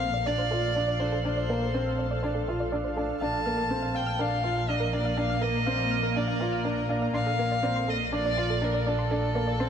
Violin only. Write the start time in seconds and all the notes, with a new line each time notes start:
Already playing: F5
0.26 D5
1.00 C5
1.24 C5
3.21 A5
3.96 G5
4.20 F5
4.69 D#5
4.94 D5
5.17 F5
5.42 D#5
6.17 D5
7.15 F5
7.90 D#5
8.15 D5
8.64 A#4
8.89 A4